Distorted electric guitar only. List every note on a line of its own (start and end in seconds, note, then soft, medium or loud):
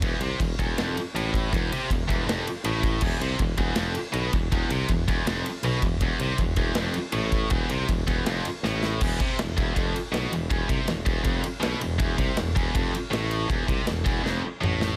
0.03 0.21 E2 loud
0.21 0.39 C3 loud
0.40 0.54 E2 medium
0.60 0.77 E2 loud
0.78 0.96 F2 loud
1.16 1.52 A2 loud
1.53 1.71 E2 loud
1.72 1.89 C3 loud
1.91 2.05 E2 medium
2.08 2.26 E2 loud
2.27 2.45 F2 loud
2.65 3.02 A2 loud
3.02 3.20 E2 loud
3.22 3.39 C3 loud
3.40 3.54 E2 medium
3.58 3.75 E2 loud
3.76 3.94 F2 loud
4.12 4.31 B2 loud
4.32 4.47 E2 medium
4.52 4.70 E2 loud
4.71 4.89 C3 loud
4.89 5.04 E2 medium
5.08 5.26 E2 loud
5.28 5.45 F2 loud
5.65 5.82 B2 loud
5.83 5.98 E2 medium
6.02 6.20 E2 loud
6.20 6.38 C3 loud
6.39 6.54 E2 medium
6.57 6.75 E2 loud
6.76 6.94 F2 loud
7.13 7.50 A2 loud
7.49 7.68 E2 loud
7.70 7.88 C3 loud
7.88 8.03 E2 medium
8.07 8.25 E2 loud
8.26 8.44 F2 loud
8.65 9.01 A2 loud
9.02 9.19 E2 loud
9.20 9.38 C3 loud
9.40 9.54 E2 medium
9.57 9.74 E2 loud
9.75 9.93 F2 loud
10.12 10.31 B2 loud
10.32 10.47 E2 medium
10.50 10.68 E2 loud
10.67 10.86 C3 loud
10.87 11.02 E2 medium
11.05 11.23 E2 loud
11.24 11.43 F2 loud
11.61 11.80 B2 loud
11.80 11.96 E2 medium
11.98 12.17 E2 loud
12.17 12.36 C3 loud
12.36 12.52 E2 medium
12.55 12.74 E2 loud
12.75 12.93 F2 loud
13.11 13.48 A2 loud
13.48 13.67 E2 loud
13.67 13.86 C3 loud
13.86 14.01 E2 medium
14.05 14.23 E2 loud
14.23 14.42 F2 loud
14.61 14.96 A2 loud